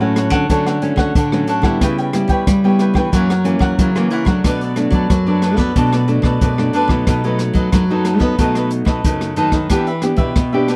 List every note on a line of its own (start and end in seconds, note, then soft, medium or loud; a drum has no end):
0.00 0.30 A2 loud
0.00 0.46 A2 medium
0.00 0.45 F#3 medium
0.00 0.45 A3 medium
0.00 0.45 C#4 medium
0.00 0.16 A4 soft
0.00 0.16 C#5 soft
0.00 0.16 F#5 soft
0.16 0.32 D4 medium
0.16 0.32 A4 soft
0.16 0.32 C#5 medium
0.16 0.31 F#5 medium
0.16 cross-stick medium
0.16 closed hi-hat soft
0.30 0.46 D3 medium
0.30 0.49 A4 medium
0.30 0.48 C#5 medium
0.30 0.48 F#5 medium
0.30 kick medium
0.30 cross-stick medium
0.30 closed hi-hat soft
0.49 1.12 D3 medium
0.49 0.92 D3 loud
0.49 0.77 F#3 medium
0.49 0.77 A3 medium
0.49 0.78 C#4 medium
0.49 0.65 D4 medium
0.49 0.65 A4 medium
0.49 0.65 C#5 medium
0.49 0.65 F#5 medium
0.49 kick medium
0.49 closed hi-hat medium
0.66 0.82 A4 soft
0.66 0.82 C#5 soft
0.66 0.82 F#5 soft
0.66 cross-stick medium
0.66 closed hi-hat soft
0.82 1.13 F#3 medium
0.82 1.13 A3 medium
0.82 1.14 C#4 medium
0.82 muted cavaquinho stroke soft
0.82 closed hi-hat soft
0.96 1.11 D3 medium
0.96 1.14 A4 medium
0.96 1.14 C#5 medium
0.96 1.14 F#5 medium
0.96 kick medium
0.96 cross-stick medium
1.15 1.78 A2 medium
1.15 1.44 D3 medium
1.15 1.46 D4 soft
1.15 1.47 A4 medium
1.15 1.48 C#5 soft
1.15 1.48 F#5 medium
1.15 kick medium
1.15 closed hi-hat medium
1.32 1.60 F#3 medium
1.32 1.60 A3 medium
1.32 1.60 C#4 medium
1.32 cross-stick medium
1.47 1.63 D4 medium
1.47 1.64 A4 medium
1.47 1.63 C#5 medium
1.47 1.62 F#5 loud
1.47 closed hi-hat soft
1.62 1.77 D3 medium
1.62 2.08 G3 medium
1.62 2.09 B3 medium
1.62 2.09 E4 medium
1.62 1.80 A4 soft
1.62 1.80 C#5 soft
1.62 1.79 F#5 soft
1.62 kick medium
1.62 cross-stick medium
1.81 2.44 C#3 medium
1.81 2.23 C#3 medium
1.81 1.97 E4 medium
1.81 1.97 B4 medium
1.81 1.97 C#5 medium
1.81 1.97 G5 medium
1.81 kick medium
1.81 cross-stick medium
1.81 closed hi-hat medium
1.98 2.13 B4 soft
1.98 2.14 C#5 soft
1.98 2.13 G5 soft
1.98 closed hi-hat soft
2.13 2.45 G3 medium
2.13 2.45 B3 soft
2.13 2.45 E4 medium
2.13 muted cavaquinho stroke soft
2.13 cross-stick medium
2.13 closed hi-hat soft
2.28 2.43 G3 medium
2.28 2.63 B4 soft
2.28 2.62 C#5 medium
2.28 2.62 G5 medium
2.28 kick medium
2.28 closed hi-hat soft
2.47 3.10 C#3 soft
2.47 2.97 G3 loud
2.47 kick medium
2.47 cross-stick medium
2.47 closed hi-hat medium
2.64 3.08 G3 medium
2.64 3.08 B3 medium
2.64 3.08 E4 medium
2.64 2.79 B4 soft
2.64 2.80 C#5 soft
2.64 2.79 G5 medium
2.79 2.95 E4 soft
2.79 2.95 B4 medium
2.79 2.95 C#5 medium
2.79 2.94 G5 medium
2.79 cross-stick medium
2.79 closed hi-hat soft
2.94 3.09 E3 medium
2.94 3.12 B4 soft
2.94 3.12 C#5 medium
2.94 3.11 G5 medium
2.94 kick medium
2.94 cross-stick medium
3.12 3.75 F#2 medium
3.12 3.32 E3 medium
3.12 3.55 F#3 loud
3.12 3.32 A#3 medium
3.12 3.32 C#4 medium
3.12 3.28 E4 medium
3.12 3.29 A#4 medium
3.12 3.29 C#5 medium
3.12 3.29 F#5 medium
3.12 kick medium
3.12 closed hi-hat medium
3.30 3.45 A#4 soft
3.30 3.45 C#5 soft
3.30 3.45 F#5 medium
3.30 cross-stick medium
3.30 closed hi-hat soft
3.44 3.89 E3 medium
3.44 3.89 A#3 medium
3.44 3.90 C#4 medium
3.44 muted cavaquinho stroke soft
3.44 closed hi-hat medium
3.59 3.75 F#3 medium
3.59 3.78 A#4 medium
3.59 3.77 C#5 medium
3.59 3.77 F#5 medium
3.59 kick medium
3.59 cross-stick medium
3.78 4.41 C#3 medium
3.78 4.07 F#3 medium
3.78 4.10 E4 medium
3.78 4.11 A#4 soft
3.78 4.11 C#5 medium
3.78 4.12 F#5 medium
3.78 kick medium
3.78 closed hi-hat medium
3.95 4.23 E3 medium
3.95 4.23 A#3 medium
3.95 4.23 C#4 medium
3.95 cross-stick medium
3.95 closed hi-hat soft
4.11 4.27 E4 medium
4.11 4.27 A#4 medium
4.11 4.27 C#5 medium
4.11 4.26 F#5 medium
4.11 closed hi-hat soft
4.25 4.40 F#3 medium
4.25 4.71 F#3 medium
4.25 4.72 A3 medium
4.25 4.72 D4 medium
4.25 4.43 C#5 soft
4.25 4.43 F#5 soft
4.25 kick medium
4.25 cross-stick medium
4.25 closed hi-hat soft
4.29 4.44 A#4 soft
4.44 4.86 B2 medium
4.44 5.07 B2 medium
4.44 4.60 D4 medium
4.44 4.60 A4 medium
4.44 4.61 B4 medium
4.44 4.60 D5 medium
4.44 kick medium
4.44 cross-stick medium
4.44 closed hi-hat medium
4.61 4.76 A4 soft
4.61 4.77 B4 medium
4.61 4.76 D5 soft
4.61 closed hi-hat soft
4.76 5.08 F#3 medium
4.76 5.08 A3 medium
4.76 5.08 D4 medium
4.76 muted cavaquinho stroke soft
4.76 cross-stick medium
4.76 closed hi-hat soft
4.91 5.06 F#3 medium
4.91 5.26 A4 medium
4.91 5.25 B4 medium
4.91 5.25 D5 medium
4.91 kick medium
4.91 closed hi-hat soft
5.10 5.73 F#2 medium
5.10 5.56 F#3 loud
5.10 kick medium
5.10 cross-stick medium
5.10 closed hi-hat medium
5.26 5.71 F#3 medium
5.26 5.71 A3 medium
5.26 5.71 D4 medium
5.26 5.42 A4 soft
5.26 5.42 B4 soft
5.26 5.42 D5 medium
5.42 5.58 D4 medium
5.42 5.58 A4 medium
5.42 5.58 B4 medium
5.42 5.57 D5 medium
5.42 cross-stick medium
5.42 closed hi-hat soft
5.56 5.72 B3 medium
5.56 5.75 A4 medium
5.56 5.75 B4 medium
5.56 5.74 D5 medium
5.56 kick medium
5.56 cross-stick medium
5.56 closed hi-hat soft
5.76 6.39 B2 medium
5.76 6.18 B2 loud
5.76 6.04 F#3 medium
5.76 6.04 A3 medium
5.76 5.91 D4 medium
5.76 6.04 D4 medium
5.76 5.92 A4 medium
5.76 5.92 B4 medium
5.76 5.92 D5 medium
5.76 kick medium
5.76 closed hi-hat medium
5.93 6.08 A4 soft
5.93 6.08 B4 soft
5.93 6.08 D5 medium
5.93 cross-stick medium
5.93 closed hi-hat soft
6.07 6.52 F#3 medium
6.07 6.53 A3 medium
6.07 6.53 D4 medium
6.07 muted cavaquinho stroke soft
6.07 closed hi-hat soft
6.22 6.37 B2 medium
6.22 6.41 A4 medium
6.22 6.40 B4 medium
6.22 6.40 D5 medium
6.22 kick medium
6.22 cross-stick medium
6.41 7.04 F#2 medium
6.41 6.70 B2 medium
6.41 6.73 D4 soft
6.41 6.74 A4 soft
6.41 6.74 B4 medium
6.41 6.74 D5 medium
6.41 kick medium
6.41 closed hi-hat medium
6.58 6.86 F#3 medium
6.58 6.86 A3 medium
6.58 6.86 D4 medium
6.58 cross-stick medium
6.73 6.89 D4 medium
6.73 6.90 A4 medium
6.73 6.89 B4 medium
6.73 6.88 D5 medium
6.73 closed hi-hat soft
6.88 7.03 B2 medium
6.88 7.23 F#3 medium
6.88 7.24 A3 medium
6.88 7.24 D#4 medium
6.88 7.06 A4 soft
6.88 7.06 B4 soft
6.88 7.05 D5 soft
6.88 kick medium
6.88 cross-stick medium
7.07 7.49 B2 loud
7.07 7.70 B2 soft
7.07 7.23 D#4 medium
7.07 7.23 A4 medium
7.07 7.23 B4 medium
7.07 7.23 D#5 medium
7.07 kick medium
7.07 cross-stick medium
7.07 closed hi-hat medium
7.24 7.68 F#3 medium
7.24 7.69 A3 medium
7.24 7.69 D#4 medium
7.24 7.39 A4 soft
7.24 7.39 B4 soft
7.24 7.39 D#5 soft
7.24 closed hi-hat soft
7.39 muted cavaquinho stroke soft
7.39 cross-stick medium
7.39 closed hi-hat soft
7.54 7.69 F#3 medium
7.54 7.88 A4 medium
7.54 7.88 B4 medium
7.54 7.88 D#5 medium
7.54 kick medium
7.54 closed hi-hat soft
7.72 8.36 F#2 medium
7.72 8.19 F#3 loud
7.72 7.83 F#3 medium
7.72 7.83 A3 medium
7.72 7.84 D#4 medium
7.72 kick medium
7.72 cross-stick medium
7.72 closed hi-hat medium
7.90 8.34 F#3 medium
7.90 8.34 A3 medium
7.90 8.35 D#4 medium
7.90 8.05 A4 soft
7.90 8.06 B4 soft
7.90 8.05 D#5 soft
8.05 8.21 D#4 soft
8.05 8.21 A4 soft
8.05 8.21 B4 medium
8.05 8.20 D#5 medium
8.05 cross-stick medium
8.05 closed hi-hat soft
8.19 8.35 B3 medium
8.19 8.38 A4 medium
8.19 8.38 B4 medium
8.19 8.37 D#5 medium
8.19 kick medium
8.19 cross-stick medium
8.39 8.81 B2 loud
8.39 9.02 B2 medium
8.39 9.00 F#3 medium
8.39 9.00 A3 medium
8.39 8.54 D#4 medium
8.39 9.00 D#4 medium
8.39 8.54 A4 medium
8.39 8.55 B4 medium
8.39 8.55 D#5 medium
8.39 kick medium
8.39 closed hi-hat medium
8.55 8.70 A4 soft
8.55 8.71 B4 soft
8.55 8.71 D#5 soft
8.55 cross-stick medium
8.55 closed hi-hat soft
8.71 muted cavaquinho stroke soft
8.71 closed hi-hat soft
8.85 9.00 B2 medium
8.85 9.04 A4 medium
8.85 9.03 B4 medium
8.85 9.03 D#5 medium
8.85 kick medium
8.85 cross-stick medium
9.04 9.67 F#2 medium
9.04 9.34 C#3 medium
9.04 9.32 F#3 soft
9.04 9.33 A3 medium
9.04 9.35 D#4 soft
9.04 9.33 D#4 medium
9.04 9.36 A4 soft
9.04 9.36 B4 medium
9.04 9.37 D#5 medium
9.04 kick medium
9.04 closed hi-hat medium
9.21 cross-stick medium
9.21 closed hi-hat soft
9.36 9.67 D#3 medium
9.36 9.58 F#3 medium
9.36 9.58 A3 medium
9.36 9.52 D#4 medium
9.36 9.59 D#4 medium
9.36 9.53 A4 medium
9.36 9.52 B4 medium
9.36 9.51 D#5 medium
9.36 closed hi-hat soft
9.52 9.69 A4 soft
9.52 9.69 B4 soft
9.52 9.68 D#5 medium
9.52 kick medium
9.52 cross-stick medium
9.52 closed hi-hat soft
9.70 10.12 E3 medium
9.70 10.33 E3 medium
9.70 9.90 B3 medium
9.70 9.86 D4 medium
9.70 9.90 D4 medium
9.70 9.86 G4 medium
9.70 9.90 G4 medium
9.70 9.86 B4 medium
9.70 9.86 E5 medium
9.70 kick medium
9.70 cross-stick medium
9.70 closed hi-hat medium
9.87 10.02 G4 soft
9.87 10.02 B4 soft
9.87 10.02 E5 medium
9.87 closed hi-hat soft
10.02 10.34 B3 medium
10.02 10.34 D4 soft
10.02 10.34 G4 medium
10.02 muted cavaquinho stroke soft
10.02 cross-stick medium
10.02 closed hi-hat soft
10.17 10.32 B2 medium
10.17 10.51 G4 medium
10.17 10.51 B4 medium
10.17 10.50 E5 medium
10.17 kick medium
10.17 closed hi-hat soft
10.36 10.76 B2 loud
10.36 10.76 B2 medium
10.36 kick medium
10.36 cross-stick medium
10.36 closed hi-hat medium
10.52 10.76 B3 medium
10.52 10.76 D4 medium
10.52 10.67 G4 soft
10.52 10.76 G4 medium
10.52 10.68 B4 soft
10.52 10.68 E5 soft
10.68 10.76 D4 soft
10.68 10.76 G4 medium
10.68 10.76 B4 medium
10.68 10.76 E5 medium
10.68 cross-stick medium
10.68 closed hi-hat soft